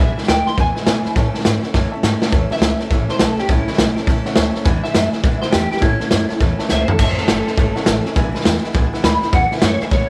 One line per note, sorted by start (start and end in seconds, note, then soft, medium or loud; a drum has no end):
0.00 0.17 B1 loud
0.00 0.17 E2 medium
0.00 0.18 B2 medium
0.00 0.18 E3 loud
0.00 0.18 G#3 loud
0.00 0.18 D4 medium
0.00 0.16 E4 medium
0.00 0.10 B4 medium
0.00 0.28 E5 loud
0.00 0.10 G#5 loud
0.17 0.27 E3 soft
0.17 0.28 G#3 soft
0.17 0.29 D4 medium
0.17 0.29 E4 medium
0.17 0.24 B4 medium
0.17 0.24 E5 medium
0.17 0.24 G#5 medium
0.17 muted upright bass stroke medium
0.17 snare soft
0.23 snare soft
0.28 0.46 D2 medium
0.28 0.47 E3 medium
0.28 0.47 G#3 medium
0.28 0.46 D4 medium
0.28 0.45 E4 medium
0.28 0.40 B4 medium
0.28 0.46 G5 loud
0.28 0.40 G#5 medium
0.28 snare loud
0.28 hi-hat pedal medium
0.46 0.58 E3 soft
0.46 0.59 G#3 soft
0.46 0.58 D4 medium
0.46 0.58 E4 medium
0.46 0.54 B4 medium
0.46 0.53 E5 medium
0.46 0.54 G#5 medium
0.46 0.58 C6 loud
0.46 muted upright bass stroke medium
0.46 snare soft
0.57 0.76 E2 medium
0.57 0.77 B2 medium
0.57 0.77 E3 medium
0.57 0.77 G#3 medium
0.57 0.76 D4 medium
0.57 0.75 E4 medium
0.57 0.69 B4 medium
0.57 0.69 E5 medium
0.57 0.69 F#5 medium
0.57 1.44 G#5 loud
0.57 kick loud
0.57 snare soft
0.75 0.87 G#3 soft
0.75 0.88 D4 medium
0.75 0.87 E4 medium
0.75 0.82 B4 medium
0.75 0.82 E5 medium
0.75 0.82 G#5 loud
0.75 muted upright bass stroke medium
0.75 snare soft
0.79 0.85 E3 soft
0.86 1.05 B2 medium
0.86 1.05 E3 medium
0.86 1.06 G#3 medium
0.86 1.05 D4 medium
0.86 0.98 B4 loud
0.86 0.97 E5 medium
0.86 0.98 G#5 loud
0.86 snare loud
0.86 hi-hat pedal medium
0.90 1.04 E4 medium
1.05 1.16 E3 soft
1.05 1.17 G#3 medium
1.05 1.17 D4 medium
1.05 1.16 E4 medium
1.05 1.12 B4 medium
1.05 1.12 E5 medium
1.05 1.12 B5 medium
1.05 muted upright bass stroke medium
1.05 snare soft
1.16 1.34 A2 loud
1.16 1.35 E3 loud
1.16 1.35 A3 loud
1.16 1.35 C#4 loud
1.16 1.33 E4 loud
1.16 1.27 C#5 loud
1.16 1.28 E5 medium
1.16 1.27 A5 loud
1.16 kick loud
1.16 snare soft
1.34 1.45 A3 medium
1.34 1.46 C#4 medium
1.34 1.45 E4 medium
1.34 1.41 C#5 medium
1.34 1.41 E5 medium
1.34 1.41 A5 loud
1.34 muted upright bass stroke medium
1.34 snare soft
1.40 snare soft
1.44 1.63 G#2 loud
1.44 1.63 E3 medium
1.44 1.64 A3 medium
1.44 1.65 C#4 medium
1.44 1.62 E4 medium
1.44 1.56 C#5 medium
1.44 1.56 E5 medium
1.44 1.56 G#5 medium
1.44 snare loud
1.44 hi-hat pedal medium
1.63 1.74 A3 medium
1.63 1.74 C#4 medium
1.63 1.75 E4 medium
1.63 1.70 C#5 medium
1.63 1.70 E5 medium
1.63 1.70 F#5 medium
1.63 muted upright bass stroke medium
1.63 snare soft
1.74 1.91 F#2 medium
1.74 1.93 A2 medium
1.74 1.93 E3 loud
1.74 1.93 A3 loud
1.74 1.93 C#4 medium
1.74 1.92 E4 medium
1.74 1.85 C#5 medium
1.74 1.85 E5 medium
1.74 1.86 A5 loud
1.74 kick loud
1.74 snare medium
1.91 2.04 E4 medium
1.91 1.99 C#5 loud
1.91 1.99 E5 loud
1.91 1.99 A5 loud
1.96 2.04 A3 medium
1.96 2.05 C#4 medium
2.03 2.20 G#2 medium
2.03 2.22 E3 medium
2.03 2.22 A3 medium
2.03 2.21 C#4 medium
2.03 2.15 C#5 loud
2.03 2.15 E5 loud
2.03 2.15 A5 loud
2.03 snare medium
2.03 hi-hat pedal medium
2.07 2.19 E4 medium
2.20 2.32 A3 soft
2.20 2.32 C#4 medium
2.20 2.32 E4 medium
2.20 2.29 C#5 medium
2.20 2.29 E5 medium
2.20 2.29 A5 loud
2.20 snare medium
2.31 2.49 E2 medium
2.31 2.50 A2 medium
2.31 2.51 E3 loud
2.31 2.51 A3 loud
2.31 2.50 C#4 loud
2.31 2.49 E4 loud
2.31 2.44 C#5 loud
2.31 2.44 E5 loud
2.31 2.44 A5 loud
2.31 kick loud
2.31 snare soft
2.50 2.62 A3 medium
2.50 2.62 C#4 medium
2.50 2.62 E4 medium
2.50 2.58 C#5 medium
2.50 2.57 E5 medium
2.50 3.08 E5 loud
2.50 2.58 A5 medium
2.50 muted upright bass stroke medium
2.50 snare soft
2.56 snare soft
2.61 2.79 C#2 loud
2.61 2.80 E3 medium
2.61 2.81 A3 medium
2.61 2.80 C#4 medium
2.61 2.73 C#5 medium
2.61 2.73 E5 medium
2.61 2.73 A5 medium
2.61 snare loud
2.61 hi-hat pedal medium
2.65 2.78 E4 medium
2.79 2.92 A3 soft
2.79 2.92 C#4 soft
2.79 2.91 E4 medium
2.79 2.87 C#5 medium
2.79 2.87 E5 medium
2.79 2.87 A5 medium
2.79 snare soft
2.90 3.09 A1 medium
2.90 3.10 A2 medium
2.90 3.10 E3 medium
2.90 3.10 A3 medium
2.90 3.10 C#4 medium
2.90 3.09 E4 medium
2.90 3.02 C#5 medium
2.90 3.02 E5 medium
2.90 3.02 A5 medium
2.90 kick loud
2.90 snare soft
3.09 3.21 C#4 soft
3.09 3.21 E4 medium
3.09 3.21 C5 medium
3.09 3.16 C#5 medium
3.09 3.16 E5 medium
3.09 3.16 A5 loud
3.09 muted upright bass stroke medium
3.09 snare soft
3.13 3.20 A3 soft
3.19 3.38 B1 medium
3.19 3.39 E3 medium
3.19 3.39 A3 medium
3.19 3.38 C#4 medium
3.19 3.39 A4 medium
3.19 3.31 C#5 loud
3.19 3.32 E5 loud
3.19 3.31 A5 loud
3.19 snare loud
3.19 hi-hat pedal medium
3.24 3.37 E4 medium
3.38 3.50 A3 soft
3.38 3.50 C#4 medium
3.38 3.49 E4 medium
3.38 3.49 G4 medium
3.38 3.46 C#5 medium
3.38 3.45 E5 medium
3.38 3.46 A5 medium
3.38 muted upright bass stroke medium
3.38 snare soft
3.49 3.67 C#2 medium
3.49 3.68 A2 medium
3.49 3.68 E3 medium
3.49 3.69 A3 medium
3.49 3.69 C#4 medium
3.49 4.06 E4 loud
3.49 3.67 E4 loud
3.49 3.60 C#5 loud
3.49 3.60 E5 medium
3.49 3.61 A5 loud
3.49 kick loud
3.49 snare soft
3.67 3.79 C#4 medium
3.67 3.79 E4 medium
3.67 3.74 C#5 medium
3.67 3.74 E5 medium
3.67 3.74 B5 medium
3.67 muted upright bass stroke medium
3.67 snare soft
3.71 3.79 A3 soft
3.71 snare soft
3.78 3.96 B1 medium
3.78 3.97 E3 medium
3.78 3.98 A3 medium
3.78 3.97 C#4 medium
3.78 3.95 E4 medium
3.78 3.90 C#5 medium
3.78 3.90 E5 medium
3.78 3.90 F#5 medium
3.78 snare loud
3.78 hi-hat pedal medium
3.96 4.08 A3 medium
3.96 4.09 C#4 medium
3.96 4.08 E4 medium
3.96 4.04 C#5 medium
3.96 4.04 E5 medium
3.96 4.04 A5 medium
3.96 muted upright bass stroke medium
3.96 snare soft
4.07 4.24 C#2 medium
4.07 4.26 A2 medium
4.07 4.27 E3 medium
4.07 4.27 A3 medium
4.07 4.26 C#4 medium
4.07 4.25 E4 loud
4.07 4.19 C#5 loud
4.07 4.19 E5 medium
4.07 4.19 A5 loud
4.07 kick loud
4.07 snare soft
4.25 4.36 A3 soft
4.25 4.37 C#4 medium
4.25 4.37 E4 medium
4.25 4.33 C#5 medium
4.25 4.33 E5 loud
4.25 4.33 F#5 loud
4.25 snare soft
4.35 4.55 D2 medium
4.35 4.55 E3 medium
4.35 4.56 A3 medium
4.35 4.56 C#4 medium
4.35 4.47 C#5 loud
4.35 4.53 E5 loud
4.35 4.47 A5 loud
4.35 snare loud
4.35 hi-hat pedal medium
4.40 4.54 E4 medium
4.54 4.66 C#4 medium
4.54 4.66 E4 medium
4.54 4.61 C#5 medium
4.54 4.61 E5 medium
4.54 4.65 A5 medium
4.54 snare soft
4.59 4.67 A3 soft
4.64 4.84 E2 loud
4.64 4.84 B2 loud
4.64 4.84 E3 loud
4.64 4.85 G#3 loud
4.64 4.85 D4 loud
4.64 4.83 E4 loud
4.64 4.76 B4 loud
4.64 4.76 E5 loud
4.64 4.76 G#5 loud
4.64 kick loud
4.64 snare soft
4.84 4.95 G#3 soft
4.84 4.96 D4 medium
4.84 4.95 E4 medium
4.84 4.91 B4 medium
4.84 5.41 E5 loud
4.84 4.91 E5 medium
4.84 4.91 G#5 medium
4.84 snare soft
4.88 4.93 E3 soft
4.93 5.13 F#2 medium
4.93 5.13 E3 medium
4.93 5.14 G#3 medium
4.93 5.05 B4 medium
4.93 5.05 F#5 medium
4.93 snare loud
4.93 hi-hat pedal medium
4.97 5.13 D4 medium
4.97 5.12 E4 medium
5.11 5.24 G#3 medium
5.11 5.24 D4 medium
5.11 5.24 E4 medium
5.11 5.19 B4 medium
5.11 5.19 E5 medium
5.11 5.19 G#5 medium
5.11 snare soft
5.16 5.23 E3 medium
5.23 5.42 E2 medium
5.23 5.41 G#2 medium
5.23 5.43 B2 medium
5.23 5.43 E3 medium
5.23 5.42 G#3 loud
5.23 5.41 D4 loud
5.23 5.40 E4 loud
5.23 5.35 B4 medium
5.23 5.35 E5 medium
5.23 5.35 F#5 medium
5.23 kick loud
5.23 snare soft
5.41 5.52 G#3 medium
5.41 5.53 D4 medium
5.41 5.53 E4 medium
5.41 5.48 B4 medium
5.41 5.53 C5 medium
5.41 5.49 E5 medium
5.41 5.49 F#5 loud
5.41 muted upright bass stroke soft
5.41 snare soft
5.45 5.51 E3 soft
5.51 5.71 E2 medium
5.51 5.71 E3 medium
5.51 5.72 G#3 medium
5.51 5.71 D4 medium
5.51 5.70 G4 medium
5.51 5.64 B4 loud
5.51 5.64 E5 loud
5.51 5.64 G#5 loud
5.51 snare loud
5.51 hi-hat pedal medium
5.56 5.70 E4 medium
5.70 5.81 E3 soft
5.70 5.83 G#3 soft
5.70 5.83 D4 soft
5.70 5.83 E4 medium
5.70 5.82 G4 medium
5.70 5.78 B4 medium
5.70 5.78 E5 medium
5.70 5.78 G#5 medium
5.70 muted upright bass stroke medium
5.70 snare soft
5.77 snare soft
5.81 6.00 A2 medium
5.81 6.01 E3 medium
5.81 6.01 A3 medium
5.81 6.00 C#4 loud
5.81 6.39 E4 loud
5.81 5.98 E4 medium
5.81 5.93 C#5 loud
5.81 5.93 E5 medium
5.81 5.93 A5 loud
5.81 kick loud
5.81 snare soft
5.99 6.11 A3 soft
5.99 6.12 C#4 medium
5.99 6.11 E4 medium
5.99 6.07 C#5 medium
5.99 6.07 E5 medium
5.99 6.07 A5 medium
5.99 muted upright bass stroke medium
5.99 snare soft
6.11 6.30 F#2 loud
6.11 6.30 E3 medium
6.11 6.30 A3 medium
6.11 6.30 C#4 medium
6.11 6.27 E4 medium
6.11 6.23 C#5 medium
6.11 6.23 E5 medium
6.11 6.23 A5 medium
6.11 snare loud
6.11 hi-hat pedal loud
6.29 6.40 A3 medium
6.29 6.40 C#4 medium
6.29 6.40 E4 medium
6.29 6.36 C#5 medium
6.29 6.36 E5 medium
6.29 6.36 A5 medium
6.29 muted upright bass stroke medium
6.29 snare soft
6.40 6.59 E2 medium
6.40 6.59 A2 medium
6.40 6.59 E3 medium
6.40 6.59 A3 medium
6.40 6.60 C#4 medium
6.40 6.58 E4 medium
6.40 6.52 C#5 medium
6.40 6.52 E5 medium
6.40 6.52 A5 loud
6.40 kick loud
6.40 snare soft
6.59 6.71 C#4 medium
6.59 6.70 E4 medium
6.59 6.66 C#5 loud
6.59 6.66 E5 medium
6.59 6.66 A5 loud
6.59 muted upright bass stroke medium
6.59 snare soft
6.63 6.69 A3 soft
6.69 6.88 C#2 medium
6.69 6.88 E3 medium
6.69 6.89 A3 medium
6.69 6.88 C#4 medium
6.69 6.81 C#5 loud
6.69 6.81 E5 loud
6.69 6.81 A5 loud
6.69 snare medium
6.69 hi-hat pedal medium
6.73 6.86 E4 medium
6.81 6.90 C5 medium
6.88 6.98 A3 soft
6.88 6.99 C#4 soft
6.88 6.99 E4 medium
6.88 7.00 A4 medium
6.88 6.95 C#5 medium
6.88 6.95 E5 medium
6.88 6.95 A5 medium
6.88 floor tom loud
6.98 7.17 A1 medium
6.98 7.17 A2 medium
6.98 7.17 E3 medium
6.98 7.18 A3 loud
6.98 7.18 C#4 loud
6.98 7.16 E4 medium
6.98 7.11 C#5 medium
6.98 7.10 E5 medium
6.98 7.09 E5 medium
6.98 7.11 A5 loud
6.98 kick loud
6.98 snare soft
6.98 crash medium
7.08 7.18 C5 medium
7.17 7.29 A3 soft
7.17 7.30 C#4 medium
7.17 7.28 E4 medium
7.17 7.27 A4 medium
7.17 7.24 C#5 medium
7.17 7.24 E5 medium
7.17 7.24 A5 medium
7.17 muted upright bass stroke medium
7.17 snare soft
7.28 7.46 F#1 loud
7.28 7.47 E3 medium
7.28 7.48 A3 medium
7.28 7.48 C#4 medium
7.28 8.13 A4 loud
7.28 7.39 C#5 medium
7.28 7.39 E5 medium
7.28 7.39 F#5 medium
7.28 snare loud
7.28 hi-hat pedal medium
7.32 7.46 E4 medium
7.47 7.58 C#4 soft
7.47 7.58 E4 medium
7.47 7.54 C#5 medium
7.47 7.53 E5 medium
7.47 7.54 A5 medium
7.47 snare soft
7.51 7.58 A3 soft
7.57 7.75 G#1 medium
7.57 7.76 A2 medium
7.57 7.76 E3 medium
7.57 7.77 A3 medium
7.57 7.76 C#4 medium
7.57 7.75 E4 medium
7.57 7.69 C#5 medium
7.57 7.69 E5 medium
7.57 7.69 A5 medium
7.57 kick loud
7.57 snare soft
7.76 7.87 A3 soft
7.76 7.88 C#4 medium
7.76 7.87 E4 medium
7.76 7.83 C#5 loud
7.76 7.83 E5 loud
7.76 7.83 F#5 loud
7.76 muted upright bass stroke medium
7.76 snare soft
7.86 8.05 A1 medium
7.86 8.05 E3 medium
7.86 8.06 A3 medium
7.86 8.04 C#4 medium
7.86 8.03 E4 medium
7.86 7.98 C#5 loud
7.86 7.98 E5 loud
7.86 7.98 A5 loud
7.86 snare loud
7.86 hi-hat pedal medium
8.04 8.16 A3 soft
8.04 8.16 C#4 medium
8.04 8.16 E4 medium
8.04 8.12 C#5 medium
8.04 8.12 E5 medium
8.04 8.12 G#5 loud
8.04 snare soft
8.16 8.34 B1 loud
8.16 8.34 E2 loud
8.16 8.34 B2 loud
8.16 8.35 E3 loud
8.16 8.34 G#3 loud
8.16 8.33 D4 loud
8.16 8.31 E4 loud
8.16 8.27 B4 loud
8.16 8.27 E5 loud
8.16 8.27 G#5 loud
8.16 kick loud
8.16 snare soft
8.33 8.42 E3 soft
8.33 8.43 G#3 medium
8.33 8.45 D4 medium
8.33 8.44 E4 medium
8.33 8.41 B4 loud
8.33 8.41 E5 medium
8.33 8.41 G#5 loud
8.33 muted upright bass stroke medium
8.33 snare soft
8.40 8.63 E3 medium
8.40 snare soft
8.45 8.63 E2 medium
8.45 8.63 G#3 medium
8.45 8.63 D4 medium
8.45 8.61 E4 medium
8.45 8.56 B4 medium
8.45 8.57 E5 medium
8.45 8.57 G#5 medium
8.45 snare loud
8.45 hi-hat pedal loud
8.62 8.73 E3 soft
8.62 8.74 G#3 medium
8.62 8.74 D4 medium
8.62 8.74 E4 medium
8.62 8.71 B4 medium
8.62 8.71 E5 medium
8.62 8.71 F#5 medium
8.62 muted upright bass stroke medium
8.62 snare soft
8.73 8.92 C#2 medium
8.73 8.92 E2 medium
8.73 8.93 B2 medium
8.73 8.93 E3 medium
8.73 8.93 G#3 medium
8.73 8.93 D4 loud
8.73 8.92 E4 loud
8.73 8.86 B4 medium
8.73 8.86 E5 medium
8.73 8.86 G#5 loud
8.73 kick loud
8.73 snare soft
8.93 9.02 E3 medium
8.93 9.04 G#3 soft
8.93 9.05 D4 medium
8.93 9.04 E4 medium
8.93 9.00 B4 loud
8.93 9.00 E5 loud
8.93 9.00 F#5 loud
8.93 muted upright bass stroke medium
8.93 snare soft
9.03 9.21 D2 medium
9.03 9.22 E3 medium
9.03 9.23 G#3 medium
9.03 9.21 D4 medium
9.03 9.20 E4 medium
9.03 9.15 B4 loud
9.03 9.15 E5 loud
9.03 9.15 G#5 loud
9.03 9.33 B5 loud
9.03 snare loud
9.03 hi-hat pedal medium
9.21 9.33 E3 soft
9.21 9.33 G#3 soft
9.21 9.33 D4 medium
9.21 9.32 E4 medium
9.21 9.29 B4 medium
9.21 9.29 E5 medium
9.21 9.29 B5 medium
9.21 snare soft
9.33 9.51 E2 medium
9.33 9.50 E2 medium
9.33 9.51 B2 medium
9.33 9.52 E3 medium
9.33 9.52 G#3 loud
9.33 9.51 D4 medium
9.33 9.49 E4 medium
9.33 9.45 B4 medium
9.33 9.45 E5 medium
9.33 9.53 F#5 loud
9.33 9.45 G#5 loud
9.33 kick loud
9.33 snare soft
9.51 9.61 E3 soft
9.51 9.61 G#3 soft
9.51 9.63 D4 medium
9.51 9.62 E4 medium
9.51 9.58 B4 medium
9.51 9.58 E5 medium
9.51 9.63 E5 loud
9.51 9.58 G#5 medium
9.51 muted upright bass stroke medium
9.51 snare soft
9.57 snare soft
9.62 9.80 F#2 medium
9.62 9.80 E3 medium
9.62 9.81 G#3 medium
9.62 9.81 D4 medium
9.62 9.79 E4 medium
9.62 9.74 B4 medium
9.62 9.82 C#5 loud
9.62 9.74 E5 medium
9.62 9.74 G#5 medium
9.62 snare loud
9.62 hi-hat pedal loud
9.81 9.90 E3 medium
9.81 9.91 G#3 soft
9.81 9.91 D4 medium
9.81 9.92 E4 medium
9.81 9.88 B4 medium
9.81 9.92 E5 medium
9.81 9.88 E5 medium
9.81 9.88 G#5 medium
9.81 muted upright bass stroke medium
9.81 snare soft
9.90 10.09 E2 medium
9.90 10.08 G#2 medium
9.90 10.09 B2 medium
9.90 10.09 E3 medium
9.90 10.09 G#3 medium
9.90 10.08 D4 medium
9.90 10.07 E4 medium
9.90 10.03 B4 medium
9.90 10.09 C#5 loud
9.90 10.03 E5 medium
9.90 10.03 F#5 medium
9.90 kick loud
9.90 snare soft